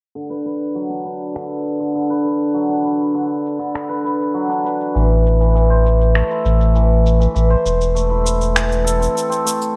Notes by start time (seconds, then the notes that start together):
0.15 D3, shaker
0.30 B4
0.45 B4, shaker
0.72 F#3, shaker
0.77 shaker
0.90 D4
1.04 B4, shaker
1.22 shaker
1.35 D3, finger snap
1.52 shaker
1.67 shaker
1.80 D3, shaker
1.95 D3, shaker
2.10 B4
2.24 B4, shaker
2.42 shaker
2.54 F#3, shaker
2.69 D4
2.84 B4, shaker
3.01 shaker
3.14 D3, shaker
3.46 shaker
3.59 D3, shaker
3.75 D3, finger snap, shaker
3.89 B4, shaker
4.04 B4, shaker
4.21 shaker
4.34 F#3
4.49 D4, shaker
4.64 B4, shaker
4.81 shaker
4.95 A1 E3, shaker
5.26 shaker
5.40 E3, shaker
5.55 E3, shaker
5.70 C5
5.85 C5, shaker
6.01 shaker
6.15 A3, finger snap, shaker
6.31 E4, shaker
6.45 A1 C5, shaker
6.61 shaker
6.75 E3, shaker
7.06 shaker
7.20 E3, shaker
7.34 A1 E3, shaker
7.50 C5
7.65 E1 C5, shaker
7.81 shaker
7.95 A3, shaker
8.10 E4
8.24 C5, shaker
8.41 shaker
8.55 E3, finger snap, shaker
8.72 shaker
8.84 A4, shaker
9.00 C4, shaker
9.15 A4, shaker
9.30 C4, shaker
9.45 A3, shaker
9.62 shaker